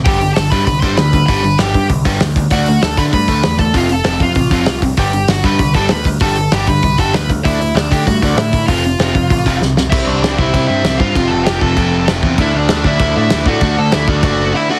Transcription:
<<
  \new Staff \with { instrumentName = "Lead electric guitar" } { \time 4/4 \key g \major \tempo 4 = 195 <g' g''>4 <a' a''>8 <b' b''>8 <b' b''>8 <c'' c'''>8 <b' b''>4 | <b' b''>4 <g' g''>4 r2 | <fis' fis''>4 <a' a''>8 <b' b''>8 <b' b''>4. <a' a''>8 | <f' f''>8 <a' a''>8 <a' a''>8 <f' f''>2 r8 |
<g' g''>4 <fis' fis''>8 <b' b''>4 <a' a''>8 <b' b''>8 r8 | <a' a''>4 <g' g''>8 <b' b''>4 <a' a''>8 <b' b''>8 r8 | <e' e''>4 <d' d''>8 <g' g''>8 <fis' fis''>4 <e' e''>4 | <f' f''>2. r4 |
<e' e''>8 <d' d''>4 <e' e''>4 <e' e''>4 <f' f''>8~ | <f' f''>8 <a' a''>8 <g' g''>8 <a' a''>4. r4 | <e' e''>8 <d' d''>4 <e' e''>4 <e' e''>4 <fis' fis''>8~ | <fis' fis''>8 <a' a''>8 <e' e''>8 <fis' fis''>4. <e' e''>8 <fis' fis''>8 | }
  \new Staff \with { instrumentName = "Overdriven electric guitar" } { \clef bass \time 4/4 \key g \major <g, d g>8 <g, d>8 <g, d>8 <g, d g>8 <g, d>8 <g, d g>8 <g, d>8 <g, d>8 | <g, d g>8 <g, d>8 <g, d g>8 <g, d>8 <g, d>8 <g, d g>8 <g, d>8 <g, d>8 | <d a d'>8 <d a>8 <d a>8 <d a d'>8 <d a>8 <d a d'>8 <d a>8 <d a>8 | <f, c f>8 <f, c>8 <f, c f>8 <f, c>8 <f, c>8 <f, c f>8 <f, c>8 <f, c>8 |
<g, d g>8 <g, d>8 <g, d>8 <g, d g>8 <g, d>8 <g, d g>8 <g, d>8 <g, d>8 | <g, d g>8 <g, d>8 <g, d g>8 <g, d>8 <g, d>8 <g, d g>8 <g, d>8 <g, d>8 | <d a d'>8 <d a>8 <d a>8 <d a d'>8 <d a>8 <d a d'>8 <d a>8 <d a>8 | <f, c f>8 <f, c>8 <f, c f>8 <f, c>8 <f, c>8 <f, c f>8 <f, c>8 <f, c>8 |
<c g c'>4 <c g c'>8 <c g c'>8 <c g c'>4 <c g c'>8 <c g c'>8 | <f, c f>4 <f, c f>8 <f, c f>8 <f, c f>4 <f, c f>8 <f, c f>8 | <d a d'>4 <d a d'>8 <d a d'>8 <d a d'>4 <d a d'>8 <d a d'>8 | <d a d'>4 <d a d'>8 <d a d'>8 <d a d'>4 <d a d'>8 <d a d'>8 | }
  \new Staff \with { instrumentName = "Picked electric bass" } { \clef bass \time 4/4 \key g \major g,,4 g,,8 g,8 c,8 g,,8 d,4 | g,,4 g,,8 g,8 c,8 g,,8 d,4 | d,4 d,8 d8 g,8 d,8 e,4 | f,,4 f,,8 f,8 a,,8 f,,8 c,4 |
g,,4 g,,8 g,8 c,8 g,,8 d,4 | g,,4 g,,8 g,8 c,8 g,,8 d,4 | d,4 d,8 d8 g,8 d,8 a,4 | f,,4 f,,8 f,8 a,,8 f,,8 c,4 |
c,8 c,8 c,8 c,8 c,8 g,8 c,8 g,8 | f,,8 f,,8 f,,8 f,,8 f,,4 f,,8 e,8 | d,8 d,8 d,8 d,8 d,8 a,8 d,8 a,8 | d,8 d,8 d,8 d,8 fis,,4 r4 | }
  \new DrumStaff \with { instrumentName = "Drums" } \drummode { \time 4/4 <hho bd>8 hho8 <hho sn>8 <hho bd>8 <hho bd>8 <hho bd>8 <hho sn>8 <hho bd>8 | <hho bd>8 hho8 <hho sn>8 <hho bd>8 <hho bd>8 <hho bd>8 <hho sn>8 <hho bd>8 | <hho bd>8 hho8 <hho sn>8 <hho bd>8 <hho bd>8 <hho bd>8 <hho sn>8 <hho bd>8 | <hho bd>8 hho8 <hho sn>8 <hho bd>8 <hho bd>8 <hho bd>8 <hho sn>8 <hho bd>8 |
<hho bd>8 hho8 <hho sn>8 <hho bd>8 <hho bd>8 <hho bd>8 <hho sn>8 <hho bd>8 | <hho bd>8 hho8 <hho sn>8 <hho bd>8 <hho bd>8 <hho bd>8 <hho sn>8 <hho bd>8 | <hho bd>8 hho8 <hho sn>8 <hho bd>8 <hho bd>8 <hho bd>8 <hho sn>8 <hho bd>8 | <hho bd>8 hho8 <hho sn>8 <hho bd>8 <hho bd>8 <hho bd>8 sn8 sn8 |
<cymc bd>4 <cymc sn>8 bd8 <cymc bd>4 <cymc sn>8 bd8 | <cymc bd>4 <cymc sn>8 bd8 <cymc bd>4 <cymc sn>8 bd8 | <cymc bd>4 <cymc sn>8 bd8 <cymc bd>4 <cymc sn>8 bd8 | <cymc bd>4 <cymc sn>8 bd8 <cymc bd>4 r4 | }
>>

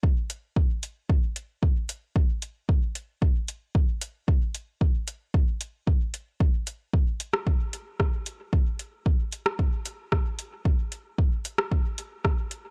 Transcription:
\new DrumStaff \with { instrumentName = "Drums" } \drummode { \time 4/4 \tempo 4 = 113 bd8 hh8 bd8 hh8 bd8 hh8 bd8 hh8 | bd8 hh8 bd8 hh8 bd8 hh8 bd8 hh8 | bd8 hh8 bd8 hh8 bd8 hh8 bd8 hh8 | bd8 hh8 bd8 hh16 ss16 bd8 hh8 <bd ss>8 hh8 |
bd8 hh8 bd8 hh16 ss16 bd8 hh8 <bd ss>8 hh8 | bd8 hh8 bd8 hh16 ss16 bd8 hh8 <bd ss>8 hh8 | }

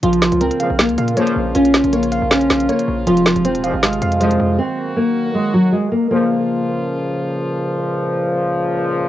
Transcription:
<<
  \new Staff \with { instrumentName = "Synth pluck" } { \time 4/4 \key bes \minor \tempo 4 = 158 f'4 bes'8 f''8 f'''8 f''8 des''4 | f'4 des''8 f''8 f'''8 f''8 des''4 | f'4 c''8 f''8 f'''8 f''8 c''4 | r1 |
r1 | r1 | }
  \new Staff \with { instrumentName = "Nylon-string guitar" } { \time 4/4 \key bes \minor f4 c'4 bes4 bes4 | des'4 bes4 des'4 bes4 | f4 c'4 aes4 aes4 | c'4 bes4 aes8 ges8 aes8 bes8 |
bes2. r4 | r1 | }
  \new Staff \with { instrumentName = "Brass ensemble" } { \clef bass \time 4/4 \key bes \minor << { <f f'>1~ | <f f'>1~ | <f f'>1 | <ges ges'>1 |
<des f bes f'>1~ | <des f bes f'>1 | } \\ { <des bes>1~ | <des bes>1 | <c aes>1 | <ees bes>1 |
r1 | r1 | } >> }
  \new Staff \with { instrumentName = "Brass ensemble" } { \clef bass \time 4/4 \key bes \minor r4. <des, bes, f>16 r4 r16 <des, bes, f>4 | r1 | r4. <c, aes, f>16 r4 r16 <c, aes, f>4 | r1 |
<des, bes, f>1~ | <des, bes, f>1 | }
  \new Staff \with { instrumentName = "808-style bass" } { \clef bass \time 4/4 \key bes \minor bes,,8. des,8 r8 bes,,8 des,16 bes,8 r8 bes,,8 | bes,,8. bes,,4 bes,,8. bes,,8 r8 bes,,8 | f,,8. f,,8 ees,,16 f,,16 aes,,8. f,4 f,8 | r1 |
r1 | r1 | }
  \new DrumStaff \with { instrumentName = "Drums" } \drummode { \time 4/4 hh16 hh16 <hh sn>16 hh16 hh16 hh16 hh8 <hh sn>16 hh16 hh16 hh16 hh16 hh8. | hh16 hh16 <hh sn>16 hh16 hh16 hh16 hh8 <hh sn>16 hh16 <hh sn>16 hh16 hh16 hh8. | hh16 hh16 <hh sn>16 hh16 hh16 hh16 hh8 <hh sn>16 hh16 hh16 hh16 hh16 hh8. | r4 r4 r4 r4 |
r4 r4 r4 r4 | r4 r4 r4 r4 | }
>>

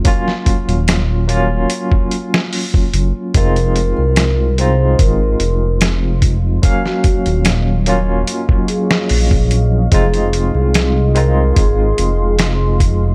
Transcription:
<<
  \new Staff \with { instrumentName = "Ambient pad" } { \time 4/4 \key f \phrygian \tempo 4 = 73 << { r1 | <aes' c'''>1 | <ges des'''>1 | <aes' c'''>1 | } \\ { r1 | <ees'' f''>1~ | <ees'' f''>1~ | <ees'' f''>1 | } >> }
  \new Staff \with { instrumentName = "Vibraphone" } { \time 4/4 \key f \phrygian r1 | bes'8. bes'8. c''8 bes'4 r4 | r16 ges'8. r4. aes'4~ aes'16 r16 | aes'8. aes'8. bes'8 aes'4 r4 | }
  \new Staff \with { instrumentName = "Tine electric piano" } { \time 4/4 \key f \phrygian <ges bes des' f'>4. <ges bes des' f'>2~ <ges bes des' f'>8 | <aes c' ees' f'>4. <aes c' ees' f'>2~ <aes c' ees' f'>8 | <ges bes des' f''>4. <ges bes des' f'>2~ <ges bes des' f'>8 | <aes c' ees' f'>4. <aes c' ees' f'>2~ <aes c' ees' f'>8 | }
  \new Staff \with { instrumentName = "Detuned saw bass" } { \clef bass \time 4/4 \key f \phrygian r8. ees,,4~ ees,,16 r4. ges,,16 r16 | f,,8. c,4~ c,16 aes,,8 f,,4. | r8. ees,,4~ ees,,16 r4 bes,,4 | f,,8. c,4~ c,16 aes,,8 f,,4. | }
  \new DrumStaff \with { instrumentName = "Drums" } \drummode { \time 4/4 <hh bd>16 sn16 <hh bd>16 hh16 <hh sn>8 hh8 hh16 bd16 hh16 sn16 hho16 bd16 hh8 | <hh bd>16 hh16 hh8 <hh sn>8 hh8 <hh bd>8 hh8 <hh sn>8 <hh bd>8 | <hh bd>16 sn16 <hh bd>16 hh16 <hh sn>8 hh8 hh16 bd16 hh16 sn16 hho16 bd16 hh8 | <hh bd>16 hh16 hh8 <hh sn>8 hh8 <hh bd>8 hh8 <hh sn>8 <hh bd>8 | }
>>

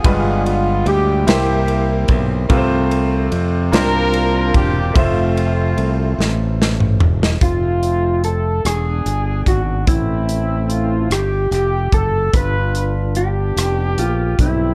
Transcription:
<<
  \new Staff \with { instrumentName = "Clean electric guitar" } { \time 6/8 \key f \major \tempo 4. = 49 r2. | r2. | r2. | f'4 a'8 gis'4 ges'8 |
e'4. g'4 a'8 | b'4 g'4 f'8 e'8 | }
  \new Staff \with { instrumentName = "Horn section" } { \time 6/8 \key f \major << { aes'8 f'8 g'8 g'4 r8 | r4. bes'4 g'8 | f'2 r4 | f'4 a'8 gis'4 ges'8 |
e'4 f'8 g'8 g'8 a'8 | b'8 r8 g'4. e'8 | } \\ { <b f'>4 r8 <bes e'>4. | r4. <d' f'>4. | <a c'>2 r4 | <a c'>4. <b d'>4. |
<a c'>4. r4. | <d' f'>4 <b d'>4. <g c'>8 | } >> }
  \new Staff \with { instrumentName = "Grand piano" } { \time 6/8 \key f \major <g, g aes f' b'>4. <bes c' e' g' c''>4. | <c a c' f' b' c''>4. <c bes d' f' c''>4. | <a f' c'' e''>2. | r2. |
r2. | r2. | }
  \new Staff \with { instrumentName = "Fingered electric bass" } { \clef bass \time 6/8 \key f \major g,,4 d,8 c,4 b,,8 | c,4 f,8 c,4 e,,8 | f,,4 c,8 a,,4 e,,8 | f,,4. e,,8 g,,8 gis,,8 |
a,,4. g,,8 f,,8 ges,,8 | g,,4. f,,8 bes,,8 b,,8 | }
  \new DrumStaff \with { instrumentName = "Drums" } \drummode { \time 6/8 <bd cymr>8 cymr8 cymr8 <cymr sn>8 cymr8 <bd cymr>8 | <bd cymr>8 cymr8 cymr8 <cymr sn>8 cymr8 <bd cymr>8 | <bd cymr>8 cymr8 cymr8 sn8 sn16 toml16 tomfh16 sn16 | <hh bd>8 hh8 hh8 <hh ss>8 hh8 <hh bd>8 |
<hh bd>8 hh8 hh8 <hh ss>8 <hh ss>8 <hh bd>8 | <hh bd>8 hh8 hh8 <hh ss>8 hh8 <hh bd>8 | }
>>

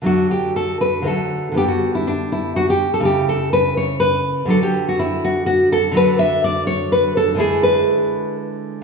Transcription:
\new Staff \with { instrumentName = "Nylon-string guitar" } { \time 3/4 \key d \major \tempo 4 = 123 << { fis'8 g'8 a'8 b'8 a'4 | g'16 fis'8 e'16 d'8 e'8 fis'16 g'8 a'16 | g'8 a'8 b'8 cis''8 b'4 | a'16 g'8 fis'16 e'8 fis'8 fis'8 a'8 |
\key d \lydian b'8 e''8 d''8 cis''8 b'8 a'8 | gis'8 b'4. r4 | } \\ { <d fis a>2 <d fis a>4 | <d g b>2. | <cis a e'>2. | <d fis d'>2. |
<d fis d'>2. | <d gis e'>2. | } >> }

